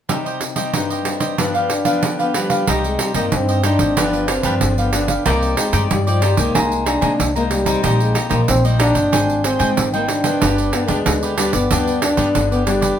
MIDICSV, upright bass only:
0, 0, Header, 1, 2, 480
1, 0, Start_track
1, 0, Key_signature, -3, "minor"
1, 0, Tempo, 645161
1, 69, Time_signature, 4, 2, 24, 8
1, 9668, End_track
2, 0, Start_track
2, 0, Title_t, "Upright bass"
2, 0, Program_c, 0, 32
2, 1992, Note_on_c, 0, 36, 84
2, 2196, Note_off_c, 0, 36, 0
2, 2342, Note_on_c, 0, 43, 76
2, 2448, Note_off_c, 0, 43, 0
2, 2475, Note_on_c, 0, 43, 85
2, 2780, Note_off_c, 0, 43, 0
2, 2819, Note_on_c, 0, 32, 92
2, 2954, Note_off_c, 0, 32, 0
2, 2954, Note_on_c, 0, 31, 89
2, 3259, Note_off_c, 0, 31, 0
2, 3305, Note_on_c, 0, 43, 78
2, 3410, Note_off_c, 0, 43, 0
2, 3435, Note_on_c, 0, 31, 76
2, 3841, Note_off_c, 0, 31, 0
2, 3914, Note_on_c, 0, 36, 85
2, 4117, Note_off_c, 0, 36, 0
2, 4264, Note_on_c, 0, 43, 81
2, 4369, Note_off_c, 0, 43, 0
2, 4395, Note_on_c, 0, 43, 91
2, 4700, Note_off_c, 0, 43, 0
2, 4746, Note_on_c, 0, 36, 89
2, 4850, Note_off_c, 0, 36, 0
2, 4873, Note_on_c, 0, 36, 85
2, 5179, Note_off_c, 0, 36, 0
2, 5223, Note_on_c, 0, 48, 74
2, 5329, Note_off_c, 0, 48, 0
2, 5354, Note_on_c, 0, 36, 84
2, 5761, Note_off_c, 0, 36, 0
2, 5833, Note_on_c, 0, 34, 90
2, 6037, Note_off_c, 0, 34, 0
2, 6179, Note_on_c, 0, 34, 82
2, 6286, Note_off_c, 0, 34, 0
2, 6313, Note_on_c, 0, 34, 96
2, 6619, Note_off_c, 0, 34, 0
2, 6660, Note_on_c, 0, 31, 82
2, 6792, Note_off_c, 0, 31, 0
2, 6792, Note_on_c, 0, 32, 80
2, 7098, Note_off_c, 0, 32, 0
2, 7142, Note_on_c, 0, 44, 73
2, 7248, Note_off_c, 0, 44, 0
2, 7273, Note_on_c, 0, 32, 75
2, 7680, Note_off_c, 0, 32, 0
2, 7754, Note_on_c, 0, 31, 84
2, 7957, Note_off_c, 0, 31, 0
2, 8102, Note_on_c, 0, 38, 83
2, 8208, Note_off_c, 0, 38, 0
2, 8233, Note_on_c, 0, 38, 85
2, 8538, Note_off_c, 0, 38, 0
2, 8584, Note_on_c, 0, 31, 84
2, 8717, Note_on_c, 0, 38, 79
2, 8728, Note_off_c, 0, 31, 0
2, 9021, Note_off_c, 0, 38, 0
2, 9061, Note_on_c, 0, 43, 76
2, 9167, Note_off_c, 0, 43, 0
2, 9191, Note_on_c, 0, 31, 76
2, 9599, Note_off_c, 0, 31, 0
2, 9668, End_track
0, 0, End_of_file